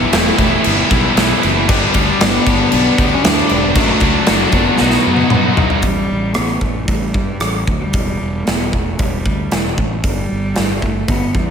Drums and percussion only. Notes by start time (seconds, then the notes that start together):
0.13 snare, crash
0.39 kick, crash
0.64 crash
0.91 kick, crash
1.17 snare, crash
1.43 crash
1.69 kick, crash
1.94 kick, crash
2.21 snare, crash
2.46 kick, crash
2.72 crash
2.98 kick, crash
3.24 snare, crash
3.49 crash
3.75 kick, crash
4.00 kick, crash
4.26 snare, crash
4.52 kick, crash
4.77 snare
4.90 snare
5.17 high tom
5.30 mid tom
5.57 floor tom
5.70 floor tom
5.82 kick, open hi-hat
6.34 cross-stick, open hi-hat
6.61 kick
6.88 kick, open hi-hat
7.14 kick
7.40 cross-stick, open hi-hat
7.67 kick
7.93 kick, open hi-hat
8.47 snare, open hi-hat
8.73 kick
8.99 kick, open hi-hat
9.26 kick
9.52 snare, open hi-hat
9.78 kick
10.04 kick, open hi-hat
10.56 snare, open hi-hat
10.82 kick
11.08 kick, open hi-hat
11.35 kick